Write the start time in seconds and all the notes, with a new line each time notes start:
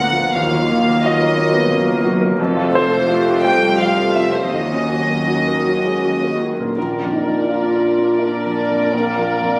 Already playing: A#1 D2 A#2 F3 A#3 B3 D4 F4 A#4 D5 F#5 A#5
0.00 A#3 F4
0.12 F3
0.17 A#4
0.33 D#2 D#3 F#3 F5
0.52 F#4
0.58 D#4
0.71 A#3
0.81 A#3
0.88 A#4
1.03 F#4 D#5
1.21 A#4
1.27 A#4
1.37 A#3
1.49 F#4
1.54 B3
1.71 F#1 F#2 A#3 A#4
1.87 A#4
1.94 A#3
2.04 F#4
2.17 D#4
2.21 A#4
2.39 F1 F2 F3 A3 F4 A4
2.57 F4
2.63 C4
2.74 F3 C5
2.86 F4 A4
3.08 A3 F4 G4 A4
3.26 A4
3.32 C5
3.43 F3 G3 G5
3.55 F5
3.61 G3
3.77 F3 F4 C5 F5
3.82 F5
3.98 A4
4.03 F4
4.15 F4 E5
4.28 C4
4.33 A4 C5
4.52 D#2 D#3 F#3 C#4 F#4 D#5
4.72 C#4
4.77 A#3
4.90 F#3
5.02 C#4
5.10 A#4
5.27 F#4
5.47 A#4
5.52 A#4
5.66 F#3
5.77 C#5
5.85 G#3
6.02 F#3 A#4
6.23 C#4 A#4
6.41 F#4
6.52 A#3
6.59 A#2 A#4
6.63 D4
6.68 F4
6.72 A#4
6.76 A#1 A#2 A#4 D5
7.02 F2
7.11 D#4
7.26 F3
7.47 D4 F4
7.74 A#4
7.98 D4
8.20 D4 A#4
8.46 F3
8.70 F2
8.93 A#1 A#3
9.17 F3
9.41 F2